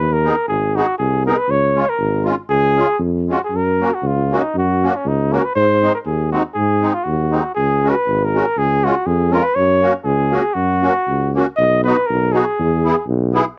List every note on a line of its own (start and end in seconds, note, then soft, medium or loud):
0.00 0.30 D#2 medium
0.00 0.15 B4 medium
0.13 0.47 A#4 medium
0.24 0.35 B3 medium
0.24 0.35 D#4 medium
0.24 0.36 G#4 medium
0.48 0.81 G#1 medium
0.48 0.77 G#4 medium
0.76 0.86 B3 medium
0.76 0.86 D#4 medium
0.76 0.98 F#4 medium
0.76 0.87 G#4 medium
0.98 1.32 C2 medium
0.98 1.23 G#4 medium
1.26 1.36 B3 medium
1.26 1.36 D#4 medium
1.26 1.37 G#4 medium
1.26 1.40 A#4 medium
1.38 1.52 B4 medium
1.48 1.81 C#2 medium
1.48 1.91 C#5 loud
1.75 1.86 G#3 medium
1.75 1.85 C#4 medium
1.75 1.86 F4 medium
1.89 2.25 A#4 medium
1.99 2.31 G#1 medium
2.24 2.35 G#3 medium
2.24 2.35 C#4 soft
2.24 2.35 F4 medium
2.49 2.82 C#2 medium
2.49 2.97 G#4 loud
2.76 2.87 G#3 medium
2.76 2.87 C#4 medium
2.76 2.88 F4 medium
2.99 3.33 F2 medium
3.29 3.39 G#3 medium
3.29 3.39 C#4 medium
3.29 3.39 F4 medium
3.29 3.41 F#4 medium
3.44 3.58 G#4 medium
3.51 3.84 F#2 medium
3.56 3.96 A#4 medium
3.80 3.90 A#3 medium
3.80 3.91 C#4 soft
3.80 3.91 F#4 medium
3.94 4.08 F#4 medium
4.03 4.36 C#2 medium
4.07 4.37 F4 medium
4.31 4.42 A#3 medium
4.31 4.42 C#4 soft
4.31 4.42 F#4 medium
4.36 4.57 D#4 medium
4.54 4.87 F#2 medium
4.54 4.97 F#4 medium
4.83 4.93 A#3 medium
4.83 4.93 C#4 soft
4.83 4.94 F#4 medium
4.96 5.09 C#4 medium
5.05 5.38 C#2 medium
5.05 5.35 D#4 medium
5.31 5.42 A#3 medium
5.31 5.42 C#4 medium
5.31 5.43 F#4 medium
5.31 5.46 A#4 medium
5.45 5.55 B4 medium
5.56 5.88 G#2 medium
5.56 5.91 C5 loud
5.82 5.92 G#3 medium
5.82 5.92 C4 medium
5.82 5.93 D#4 medium
5.95 6.00 A#4 medium
6.06 6.38 D#2 medium
6.06 6.31 G#4 medium
6.32 6.42 G#3 medium
6.32 6.43 C4 medium
6.32 6.43 D#4 medium
6.32 6.43 F#4 medium
6.55 6.89 G#2 medium
6.55 6.95 G#4 medium
6.81 6.92 G#3 medium
6.81 6.93 C4 medium
6.81 6.93 D#4 medium
6.94 7.05 F4 medium
7.04 7.39 D#2 medium
7.04 7.55 F#4 medium
7.31 7.43 G#3 medium
7.31 7.43 C4 medium
7.31 7.43 D#4 medium
7.55 7.90 C#2 medium
7.55 7.91 G#4 medium
7.83 7.94 G#3 medium
7.83 7.95 C#4 medium
7.83 7.95 F#4 medium
7.90 8.26 B4 medium
8.08 8.40 G#1 medium
8.25 8.60 A#4 medium
8.34 8.45 G#3 medium
8.34 8.45 C#4 medium
8.34 8.46 F#4 medium
8.57 8.90 C#2 medium
8.57 8.85 G#4 medium
8.84 8.95 G#3 medium
8.84 8.95 C#4 medium
8.84 8.95 F4 medium
8.84 9.07 F#4 medium
9.06 9.39 F2 medium
9.06 9.34 G#4 medium
9.31 9.42 G#3 medium
9.31 9.43 C#4 medium
9.31 9.43 F4 medium
9.31 9.45 A#4 medium
9.43 9.56 B4 medium
9.55 9.89 F#2 medium
9.55 9.94 C#5 loud
9.81 9.93 A#3 medium
9.81 9.93 C#4 medium
9.81 9.93 F#4 medium
10.05 10.38 C#2 medium
10.05 10.55 G#4 medium
10.31 10.42 A#3 medium
10.31 10.43 C#4 soft
10.31 10.43 F#4 medium
10.54 10.89 F#2 medium
10.54 11.34 F#4 medium
10.82 10.93 A#3 soft
10.82 10.94 C#4 medium
10.82 10.94 F#4 medium
11.08 11.41 C#2 medium
11.35 11.46 A#3 medium
11.35 11.46 C#4 medium
11.35 11.47 F#4 medium
11.57 11.91 B1 medium
11.57 11.83 D#5 loud
11.84 11.96 B3 medium
11.84 11.97 D#4 medium
11.84 11.97 F#4 medium
11.84 12.08 B4 medium
12.06 12.42 B1 medium
12.06 12.34 A#4 medium
12.32 12.45 B3 medium
12.32 12.45 D#4 medium
12.32 12.46 F#4 medium
12.32 13.06 G#4 medium
12.59 12.91 E2 medium
12.85 12.96 B3 medium
12.85 12.95 E4 medium
12.85 12.96 G#4 medium
13.08 13.40 B1 loud
13.33 13.44 B3 medium
13.33 13.45 E4 medium
13.33 13.45 G#4 medium